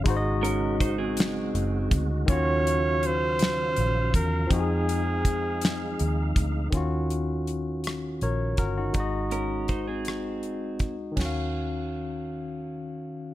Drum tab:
CC |------|------|------|------|
HH |xxxxxx|xxxxxx|xxxxxx|xxxxxx|
SD |---o--|---o--|---o--|---r--|
BD |o-o--o|o----o|o-o--o|o----o|

CC |------|x-----|
HH |xxxxxx|------|
SD |---r--|o-----|
BD |o-o--o|o-----|